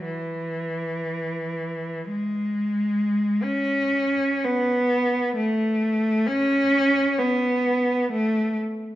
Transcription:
cello
0.04 E3
2.11 G#3
3.43 C#4
4.44 B3
5.36 A3
6.26 C#4
7.18 B3
8.11 A3

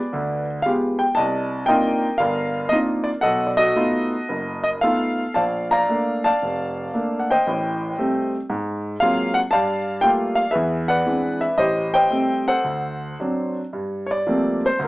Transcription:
grand piano
Already playing: B4 D5
0.13 D2 D3
0.62 G#3 B3 F4 G4 F5
0.99 G5
1.15 C2 D5 D#5 A5
1.66 A#3 C4 D4 D#4 F4 A#4 D#5 G5
2.18 G1 A#4 D5 F5
2.69 A#3 C4 D4 D#4 F4 D#5
3.04 D5
3.21 B1 A4 D#5 F#5
3.47 D5
3.57 F#4 A4 D#5
3.76 A3 B3 D#4 F4
4.29 F#1
4.64 D#5
4.81 A3 B3 D#4 F4 A4 F5
5.34 A#1 D5 F5 A5
5.71 D5 F5 A#5
5.89 A3 A#3 D4
6.24 D5 F5 A5
6.42 F1
6.94 A3 A#3 D4
7.19 F#5
7.30 C5 D#5 G5
7.47 A1 A2
7.98 G3 A3 C4
8.50 G#2
9.00 F#3 G#3 A#3 C4 F4 F5
9.34 F#5
9.51 G2 D5 F5 A5
10.01 G3 A3 A#3 F4 G5
10.35 F5
10.51 G#4 B4 E5
10.55 E2
10.88 B4 D5 F#5
11.06 E3 G#3 C4 D4
11.41 E5
11.58 A1 G4 C5 D#5
11.94 C5 D#5 G5
12.10 G3 A3 C4
12.48 A4 C5 F#5
12.64 D2
13.20 F#3 C4 D4
13.73 G2
14.06 C#5
14.11 D5
14.27 F3 G3 A3 A#3 C4
14.66 C5
14.79 D2
14.84 A#4

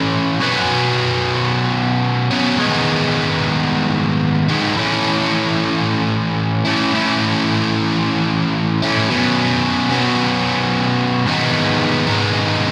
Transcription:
overdriven electric guitar
Already playing: A2 E3 A3 C#4 E4
0.40 B2 F#3 B3 C#4
2.31 B2 F#3 B3 C#4
2.57 G#2 D#3 G#3 B3 D#4
4.49 G#2 D#3 G#3 B3 D#4
4.76 A2 E3 A3 C#4 E4
6.65 A2 E3 A3 C#4 E4
6.92 A2 E3 A3 C#4 E4
8.82 A2 E3 A3 C#4 E4
9.09 B2 F#3 B3 C#4
9.90 B2 F#3 B3 C#4
11.26 G#2 D#3 G#3 B3 D#4
12.07 G#2 D#3 G#3 B3 D#4

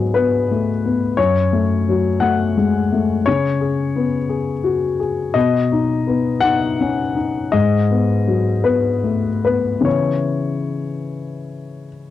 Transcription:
grand piano
Already playing: G#2 F#3 B3 G#4
0.14 B3 B4
0.51 A3
0.85 B3
1.17 F#2 C#5
1.53 A3
1.89 F#3
2.20 A3 F#5
2.57 G#3
2.92 A3
3.26 C#3 C#5
3.61 G#4
3.96 B3
4.29 G#4
4.64 F#4
5.00 G#4
5.34 B2 D#5
5.72 D#4
6.07 B3
6.41 D#4 F#5
6.81 C#4
7.15 D#4
7.52 G#2 D#5
7.90 B3
8.27 F#3
8.64 B3 B4
9.04 A3
9.45 B3 B4
9.81 C#3 E3 B3
9.85 E4 C#5

